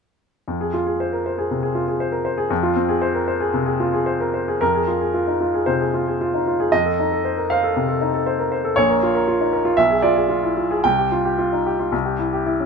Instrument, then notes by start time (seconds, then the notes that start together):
grand piano
0.48 F2
0.61 G#4
0.74 F4
0.87 G#4
1.00 C5
1.13 A#4
1.26 C5
1.38 G#4
1.51 C3
1.63 G#4
1.75 F4
1.88 G#4
2.00 C5
2.12 A#4
2.25 C5
2.38 G#4
2.50 F2
2.63 F4
2.76 C4
2.89 G#4
3.02 C5
3.15 A#4
3.28 C5
3.40 G#4
3.54 C3
3.66 G#4
3.80 F4
3.93 G#4
4.06 C5
4.20 A#4
4.34 C5
4.48 G#4
4.61 F2 A#4
4.75 G#4
4.88 F4
5.01 G#4
5.14 F4
5.27 D#4
5.41 F4
5.54 G#4
5.66 C3 C5
5.81 G#4
5.94 F4
6.07 G#4
6.21 F4
6.34 D#4
6.47 F4
6.60 G#4
6.72 F2 D#5
6.86 A4
6.99 D#4
7.12 A4
7.25 C5
7.38 A#4
7.50 C5 F5
7.63 A4
7.76 C3
7.89 A4
8.01 D#4
8.14 A4
8.26 C5
8.39 A#4
8.52 C5
8.64 A4
8.76 A#1 C#5
8.90 A#4
9.03 F4
9.15 A#4
9.28 F4
9.41 D#4
9.53 A#4
9.65 F4
9.77 B1 E5
9.90 G#4
10.02 F4 D5
10.16 G#4
10.29 F4
10.43 E4
10.57 F4
10.71 G#4
10.84 C2 G5
10.99 G4
11.12 F4
11.25 G4
11.39 F4
11.53 D#4
11.66 G4
11.79 F4
11.92 C2
12.06 G4
12.19 E4
12.33 G4
12.46 E4
12.60 C#4